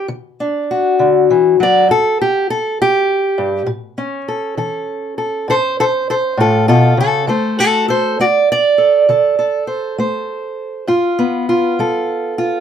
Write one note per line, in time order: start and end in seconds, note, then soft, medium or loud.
0.08 0.63 D3 medium
0.40 1.85 D4 soft
0.71 1.86 F#4 soft
0.99 1.29 D3 medium
1.30 1.59 E3 medium
1.60 1.89 F#3 medium
1.60 1.91 D5 medium
1.89 2.42 G2 medium
1.89 2.20 A4 medium
2.22 2.50 G4 medium
2.50 2.79 A4 medium
2.82 3.70 G4 medium
3.38 3.66 G2 medium
3.66 4.21 A2 medium
3.98 7.24 C#4 soft
4.28 4.57 A4 soft
4.57 5.11 E3 medium
4.57 5.17 A4 soft
5.18 5.48 A4 soft
5.48 6.02 A2 medium
5.48 5.54 A4 medium
5.48 5.79 C5 medium
5.80 5.84 A4 medium
5.80 6.09 C5 medium
6.10 6.14 A4 medium
6.10 6.39 C5 medium
6.37 6.67 A2 medium
6.37 6.67 F4 medium
6.37 6.68 A4 medium
6.68 6.97 B2 medium
6.68 6.98 F4 medium
6.68 6.98 A4 medium
6.97 7.27 C#3 medium
6.97 7.28 A4 medium
7.27 7.81 D3 medium
7.27 8.18 A3 soft
7.27 7.58 A4 soft
7.27 7.59 C5 soft
7.59 7.88 F#4 medium
7.59 7.87 A4 medium
7.88 8.18 A4 medium
7.88 8.19 C5 medium
8.20 8.73 A3 medium
8.20 8.24 F#4 medium
8.20 8.49 D5 medium
8.52 9.67 D5 medium
8.78 9.08 A4 soft
9.09 9.62 D3 medium
9.09 9.38 A4 soft
9.39 10.85 A4 soft
9.67 9.98 C5 soft
9.98 10.52 A3 medium
9.98 10.85 C5 soft
10.87 11.42 G2 medium
10.87 11.48 F4 medium
11.19 12.60 B3 medium
11.49 12.37 F4 medium
11.79 12.33 G3 medium
11.79 12.60 A4 medium
12.38 12.60 F4 medium